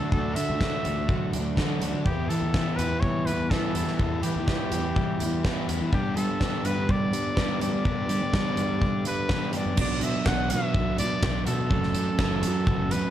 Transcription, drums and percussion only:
0.12 kick
0.36 closed hi-hat
0.61 kick, snare
0.85 closed hi-hat
1.09 kick
1.33 closed hi-hat
1.57 kick, snare
1.82 closed hi-hat
2.06 kick
2.30 closed hi-hat
2.54 kick, snare
2.79 closed hi-hat
3.03 kick
3.27 closed hi-hat
3.51 kick, snare
3.75 closed hi-hat
3.88 snare
3.99 kick
4.23 closed hi-hat
4.48 kick, snare
4.72 closed hi-hat
4.96 kick
5.20 closed hi-hat
5.45 kick, snare
5.69 closed hi-hat
5.93 kick
6.17 closed hi-hat
6.41 kick, snare
6.65 closed hi-hat
6.89 kick
7.13 closed hi-hat
7.37 kick, snare
7.61 closed hi-hat
7.85 kick
8.09 closed hi-hat
8.34 kick, snare
8.57 closed hi-hat
8.82 kick
9.05 closed hi-hat
9.29 kick, snare
9.53 closed hi-hat
9.77 kick, crash
10.01 closed hi-hat
10.26 kick, snare
10.50 closed hi-hat
10.74 kick
10.98 closed hi-hat
11.23 kick, snare
11.47 closed hi-hat
11.71 kick
11.83 snare
11.95 closed hi-hat
12.19 kick, snare
12.43 closed hi-hat
12.67 kick
12.91 closed hi-hat

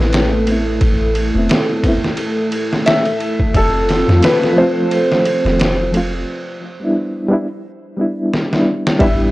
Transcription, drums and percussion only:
0.00 snare
0.13 snare, ride
0.47 ride
0.81 kick, ride
1.15 ride
1.49 snare, ride
1.84 kick, ride
2.04 snare
2.17 ride
2.52 ride
2.73 snare
2.86 snare, ride
3.05 ride
3.20 ride
3.40 kick
3.54 kick, ride
3.89 snare, ride
4.09 snare
4.23 snare, ride
4.43 snare
4.91 ride
5.12 snare
5.25 ride
5.46 snare
5.60 snare, ride
5.94 ride
8.34 snare
8.53 snare
8.87 snare
9.00 kick, ride

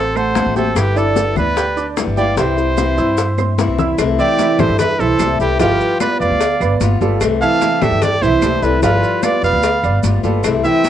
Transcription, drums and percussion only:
0.15 high bongo, high conga, claves, maracas
0.35 high bongo, low bongo, high conga, maracas
0.56 high bongo, high conga, maracas
0.76 high bongo, high conga, claves, maracas
0.96 high conga, maracas
1.16 high bongo, high conga, maracas
1.36 high conga, low conga, claves, maracas
1.56 high bongo, high conga, maracas
1.77 high conga, maracas
1.97 high bongo, low bongo, high conga, claves, maracas
2.17 high conga, maracas
2.37 high bongo, high conga, maracas
2.58 high bongo, high conga, maracas
2.78 high bongo, high conga, claves, maracas
2.98 high conga, maracas
3.18 high bongo, high conga, maracas
3.38 high bongo, high conga, claves, maracas
3.58 high bongo, low bongo, high conga, maracas
3.79 high bongo, low conga, maracas
3.99 cowbell, high conga, claves, maracas
4.19 high conga, maracas
4.39 cowbell, high conga, maracas
4.59 cowbell, high conga, low conga, claves, maracas
4.79 cowbell, high conga, low conga, maracas
5.00 high conga, maracas
5.19 cowbell, high conga, claves, maracas
5.40 maracas
5.59 cowbell, high conga, maracas
5.80 high conga, maracas
6.00 cowbell, high conga, claves, maracas
6.21 high conga, maracas
6.40 cowbell, high conga, maracas
6.61 high conga, claves, maracas
6.81 cowbell, high conga, maracas
7.01 high conga, maracas
7.21 cowbell, high conga, claves, maracas
7.42 high conga, maracas
7.62 cowbell, high conga, maracas
7.82 cowbell, high conga, low conga, claves, maracas
8.02 cowbell, high conga, low conga, maracas
8.22 high conga, maracas
8.42 cowbell, high conga, claves, maracas
8.63 maracas
8.83 cowbell, maracas
9.03 high conga, maracas
9.23 cowbell, high conga, claves, maracas
9.43 high conga, maracas
9.63 cowbell, high conga, maracas
9.83 high conga, claves, maracas
10.03 cowbell, high conga, maracas
10.23 high conga, maracas
10.44 cowbell, high conga, claves, maracas
10.64 high conga, maracas
10.84 cowbell, high conga, maracas

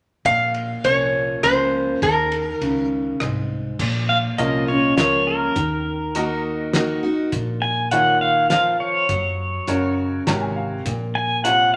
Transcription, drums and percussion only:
0.25 kick, ride
0.54 ride
0.84 ride
1.43 cross-stick, ride
2.02 kick, ride
2.32 ride
2.61 ride
3.20 cross-stick, ride
3.79 kick, crash
4.38 closed hi-hat
4.98 snare, closed hi-hat
5.56 kick, closed hi-hat
6.15 closed hi-hat
6.73 snare, closed hi-hat
7.32 kick, closed hi-hat
7.91 closed hi-hat
8.50 snare, closed hi-hat
9.09 kick, closed hi-hat
9.68 closed hi-hat
10.27 snare, closed hi-hat
10.86 kick, closed hi-hat
11.45 closed hi-hat

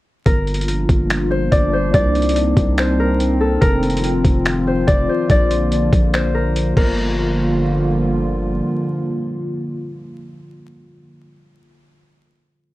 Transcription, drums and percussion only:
0.26 kick, closed hi-hat
0.47 closed hi-hat
0.54 closed hi-hat
0.61 closed hi-hat
0.68 closed hi-hat
0.89 kick, closed hi-hat
1.10 finger snap, closed hi-hat
1.52 kick, closed hi-hat
1.94 kick, closed hi-hat
2.15 closed hi-hat
2.22 closed hi-hat
2.29 closed hi-hat
2.36 closed hi-hat
2.57 kick, closed hi-hat
2.78 finger snap, closed hi-hat
3.20 closed hi-hat
3.62 kick, closed hi-hat
3.83 closed hi-hat
3.90 closed hi-hat
3.97 closed hi-hat
4.04 closed hi-hat
4.25 kick, closed hi-hat
4.46 finger snap, closed hi-hat
4.88 kick, closed hi-hat
5.30 kick, closed hi-hat
5.51 closed hi-hat
5.72 closed hi-hat
5.93 kick, closed hi-hat
6.14 finger snap, closed hi-hat
6.56 closed hi-hat
6.77 kick, crash

